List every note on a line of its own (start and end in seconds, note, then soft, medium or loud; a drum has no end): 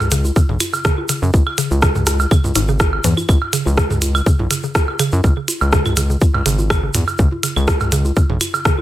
0.00 0.31 C#2 medium
0.00 mid tom loud
0.00 high woodblock medium
0.00 shaker soft
0.11 0.21 C#3 loud
0.11 closed hi-hat loud
0.11 shaker medium
0.25 high conga soft
0.25 shaker soft
0.36 0.40 C#3 medium
0.36 kick loud
0.36 high woodblock soft
0.36 shaker medium
0.49 0.57 B1 loud
0.49 0.55 C#3 medium
0.49 mid tom medium
0.60 closed hi-hat loud
0.60 high conga soft
0.60 claves medium
0.60 shaker loud
0.73 high woodblock medium
0.73 shaker soft
0.85 0.94 C#3 loud
0.85 kick loud
0.85 cross-stick medium
0.85 shaker medium
0.98 high conga soft
1.09 1.13 C#3 medium
1.09 closed hi-hat medium
1.09 high woodblock soft
1.09 shaker loud
1.22 1.31 F#2 loud
1.22 1.28 C#3 medium
1.22 shaker soft
1.34 1.43 C#2 loud
1.34 kick loud
1.34 high conga soft
1.34 shaker medium
1.47 claves medium
1.47 high woodblock medium
1.58 1.67 C#3 loud
1.58 closed hi-hat medium
1.58 shaker loud
1.71 2.26 C#2 loud
1.71 high conga soft
1.71 shaker soft
1.82 1.86 C#3 medium
1.82 kick loud
1.82 cross-stick medium
1.82 high woodblock soft
1.82 shaker soft
1.95 2.01 C#3 medium
1.95 mid tom medium
1.95 shaker soft
2.06 cross-stick medium
2.06 closed hi-hat loud
2.06 high conga soft
2.06 shaker loud
2.20 high woodblock medium
2.20 shaker soft
2.31 2.41 C#3 loud
2.31 kick loud
2.31 claves medium
2.31 shaker medium
2.44 2.53 C#2 loud
2.44 mid tom medium
2.44 high conga soft
2.44 shaker soft
2.55 3.00 G#1 medium
2.55 2.59 G#2 loud
2.55 closed hi-hat loud
2.55 high woodblock soft
2.55 shaker loud
2.68 2.72 C#3 loud
2.68 shaker soft
2.80 kick loud
2.80 cross-stick medium
2.80 high conga soft
2.80 shaker soft
2.93 high woodblock medium
3.04 3.14 E2 medium
3.04 3.14 E3 loud
3.04 closed hi-hat medium
3.04 mid tom loud
3.04 shaker loud
3.17 high conga soft
3.17 claves medium
3.17 shaker soft
3.29 3.38 C#2 loud
3.29 kick loud
3.29 high conga soft
3.29 claves medium
3.29 shaker soft
3.42 high woodblock medium
3.53 3.62 C#3 loud
3.53 closed hi-hat loud
3.53 shaker loud
3.66 4.22 C#2 medium
3.66 high conga soft
3.66 shaker soft
3.78 3.81 C#3 medium
3.78 kick loud
3.78 cross-stick medium
3.78 high woodblock soft
3.78 shaker medium
3.90 3.94 C#3 medium
3.90 mid tom medium
3.90 shaker soft
4.02 closed hi-hat medium
4.02 high conga soft
4.02 shaker medium
4.15 claves medium
4.15 high woodblock medium
4.15 shaker soft
4.26 4.36 C#3 loud
4.26 kick loud
4.26 shaker soft
4.39 4.48 B1 loud
4.39 mid tom medium
4.39 high conga soft
4.51 4.54 C#3 medium
4.51 closed hi-hat loud
4.51 high woodblock soft
4.51 shaker loud
4.63 4.67 C#3 medium
4.63 shaker soft
4.75 kick loud
4.75 cross-stick medium
4.75 high conga soft
4.75 shaker soft
4.88 high woodblock medium
4.99 5.09 C#3 loud
4.99 closed hi-hat medium
4.99 claves medium
4.99 shaker medium
5.12 5.21 F#2 loud
5.12 high conga soft
5.12 shaker soft
5.24 5.34 C#2 medium
5.24 5.28 C#3 medium
5.24 kick loud
5.24 high woodblock soft
5.24 shaker soft
5.37 5.40 C#3 medium
5.48 closed hi-hat medium
5.48 high conga soft
5.48 shaker loud
5.61 6.17 C#2 loud
5.61 high woodblock medium
5.61 shaker soft
5.72 5.82 C#3 loud
5.72 kick loud
5.72 cross-stick medium
5.72 shaker medium
5.85 mid tom medium
5.85 high conga soft
5.85 claves medium
5.85 shaker soft
5.97 6.01 C#3 medium
5.97 closed hi-hat medium
5.97 high woodblock soft
5.97 shaker medium
6.10 6.13 C#3 medium
6.10 shaker soft
6.21 kick loud
6.21 high conga soft
6.21 shaker medium
6.34 6.43 C#2 loud
6.34 mid tom medium
6.34 high woodblock medium
6.46 6.90 G#1 loud
6.46 6.55 C#3 loud
6.46 closed hi-hat loud
6.46 shaker medium
6.59 high conga soft
6.59 shaker soft
6.70 6.74 C#3 medium
6.70 kick loud
6.70 cross-stick medium
6.70 claves medium
6.70 high woodblock soft
6.70 shaker soft
6.83 6.87 C#3 medium
6.94 7.04 E2 medium
6.94 closed hi-hat medium
6.94 mid tom medium
6.94 high conga soft
6.94 shaker loud
7.08 high woodblock medium
7.08 shaker soft
7.18 7.29 C#2 loud
7.18 7.28 C#3 loud
7.18 kick loud
7.18 shaker medium
7.32 high conga soft
7.43 7.47 C#3 medium
7.43 closed hi-hat medium
7.43 high woodblock soft
7.43 shaker loud
7.56 8.12 C#2 loud
7.56 7.60 C#3 medium
7.56 claves medium
7.56 shaker soft
7.68 kick loud
7.68 cross-stick medium
7.68 high conga soft
7.68 shaker soft
7.80 mid tom medium
7.80 high woodblock medium
7.80 shaker soft
7.92 8.02 C#3 loud
7.92 closed hi-hat medium
7.92 shaker medium
8.05 high conga soft
8.05 shaker soft
8.16 8.20 C#3 medium
8.16 kick loud
8.16 high woodblock soft
8.16 shaker medium
8.30 8.38 B1 loud
8.30 8.33 C#3 medium
8.30 mid tom medium
8.41 closed hi-hat medium
8.41 high conga soft
8.41 claves medium
8.41 shaker medium
8.54 high woodblock medium
8.54 shaker soft
8.65 8.75 C#3 loud
8.65 kick loud
8.65 cross-stick medium
8.65 shaker medium
8.78 high conga soft